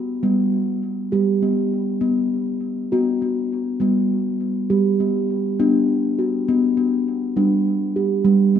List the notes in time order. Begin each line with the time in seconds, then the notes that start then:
Already playing: B3
0.23 G3 B3
1.12 G3 G4
1.43 B3
2.01 B3
2.92 B3 F#4
3.22 B3
3.80 G3 B3
4.70 G3 G4
5.00 B3
5.59 B3 D4
6.19 F#4
6.48 B3
6.77 B3
7.37 G3 D4
7.96 G4
8.25 G3
8.55 B3